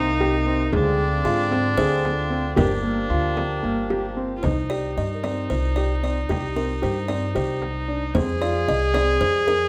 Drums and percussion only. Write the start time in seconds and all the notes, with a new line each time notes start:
0.21 frame drum
0.73 frame drum
1.52 frame drum
2.05 frame drum
2.57 frame drum
3.37 frame drum
3.64 frame drum
3.90 frame drum
4.17 frame drum
4.44 frame drum
5.24 frame drum
6.30 frame drum
7.09 frame drum
7.62 frame drum
8.15 frame drum
8.94 frame drum
9.47 frame drum